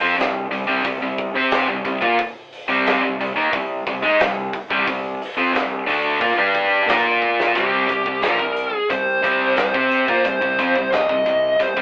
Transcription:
0.01 fingered electric bass F2, distorted electric guitar F3 C4
0.17 fingered electric bass C2, distorted electric guitar C3 G3, snare, open hi-hat
0.50 fingered electric bass C2, distorted electric guitar C3 G3, open hi-hat
0.67 fingered electric bass C2, distorted electric guitar C3 G3
0.85 fingered electric bass C2, distorted electric guitar C3 G3, kick, open hi-hat
1.01 fingered electric bass C2, distorted electric guitar C3 G3
1.18 kick, open hi-hat
1.34 fingered electric bass C3, distorted electric guitar C4 G4 C5
1.51 snare, open hi-hat
1.68 fingered electric bass C2, distorted electric guitar C3 G3
1.85 fingered electric bass C2, distorted electric guitar C3 G3, kick, open hi-hat
2.01 fingered electric bass A#2, distorted electric guitar A#3 F4, kick
2.19 kick, open hi-hat
2.53 open hi-hat
2.68 fingered electric bass C2, distorted electric guitar C3 G3 C4
2.87 snare, open hi-hat
3.02 fingered electric bass C2, distorted electric guitar C3 G3
3.19 fingered electric bass C2, distorted electric guitar C3 G3, open hi-hat
3.36 fingered electric bass D#2, distorted electric guitar D#3 A#3
3.53 fingered electric bass C2, distorted electric guitar C3 G3, kick, open hi-hat
3.87 fingered electric bass C2, distorted electric guitar C3 G3, kick, open hi-hat
4.03 fingered electric bass G#2, distorted electric guitar G#3 D#4
4.20 fingered electric bass C2, distorted electric guitar C3 G3, snare, open hi-hat
4.53 kick, open hi-hat
4.70 fingered electric bass C2, distorted electric guitar C3 G3, kick
4.87 fingered electric bass C2, distorted electric guitar C3 G3, kick, open hi-hat
5.22 open hi-hat
5.37 fingered electric bass F2, distorted electric guitar F3 C4
5.53 fingered electric bass C2, distorted electric guitar C3 G3, snare, open hi-hat
5.87 fingered electric bass D2, distorted electric guitar D3 A3 D4, open hi-hat
6.20 fingered electric bass A#2, distorted electric guitar A#3 F4, kick, open hi-hat
6.37 fingered electric bass G2, distorted electric guitar G3 D4 G4
6.55 kick, open hi-hat
6.86 fingered electric bass A#2, distorted electric guitar A#3 F4 A#4, snare, open hi-hat
7.22 kick
7.40 snare
7.55 fingered electric bass C2, distorted electric guitar C3 G3 C4, lead electric guitar G4, kick, closed hi-hat
7.89 fingered electric bass C2, distorted electric guitar C3 G3, kick, closed hi-hat
8.06 fingered electric bass C2, distorted electric guitar C3 G3, kick
8.22 fingered electric bass A#1, distorted electric guitar A#2 F3, lead electric guitar A#4, snare, closed hi-hat
8.39 fingered electric bass C2, distorted electric guitar C3 G3, kick
8.57 closed hi-hat
8.75 lead electric guitar G#4
8.90 fingered electric bass C2, distorted electric guitar C3 G3, lead electric guitar C5, kick, closed hi-hat
9.23 fingered electric bass C2, distorted electric guitar C3 G3 C4, kick, closed hi-hat
9.57 fingered electric bass C2, distorted electric guitar C3 G3, lead electric guitar C5, snare, closed hi-hat
9.74 fingered electric bass C3, distorted electric guitar C4 G4 C5, kick
9.92 closed hi-hat
10.08 fingered electric bass A#2, distorted electric guitar A#3 F4, kick
10.25 fingered electric bass C2, distorted electric guitar C3 G3, lead electric guitar C5, kick, closed hi-hat
10.41 fingered electric bass C2, distorted electric guitar C3 G3, kick
10.59 fingered electric bass F2, distorted electric guitar F3 C4, kick, closed hi-hat
10.76 fingered electric bass C2, distorted electric guitar C3 G3, kick
10.93 lead electric guitar D#5, snare, closed hi-hat
11.09 fingered electric bass C2, distorted electric guitar C3 G3, kick
11.26 fingered electric bass C2, distorted electric guitar C3 G3, kick, closed hi-hat
11.60 fingered electric bass C2, distorted electric guitar C3 G3, lead electric guitar C5, kick, closed hi-hat
11.77 fingered electric bass C2, distorted electric guitar C3 G3, kick

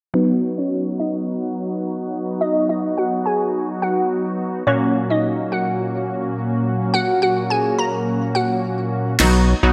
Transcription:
0.14 analog polysynth F#3 B3 D#4 F#4, synth pluck B3 B4
0.58 synth pluck C#4 C#5
1.00 synth pluck D#4 D#5
2.41 synth pluck D#4 D#5
2.69 synth pluck D#4 D#5
2.97 synth pluck F#4 F#5
3.26 synth pluck G#4 G#5
3.82 synth pluck F#4 F#5
4.67 analog polysynth A#2 F#3 A#3 C#4 F#4, synth pluck C#4 C#5
5.10 synth pluck D#4 D#5
5.52 synth pluck F#4 F#5
6.94 synth pluck F#4 F#5
7.22 synth pluck F#4 F#5
7.50 synth pluck G#4 G#5
7.79 synth pluck A#4 A#5
8.35 synth pluck F#4 F#5
9.20 analog synth bass B1, analog polysynth F#3 B3 D#4 F#4, snare, crash
9.63 analog synth bass B1, analog polysynth F#3 B3 D#4 F#4

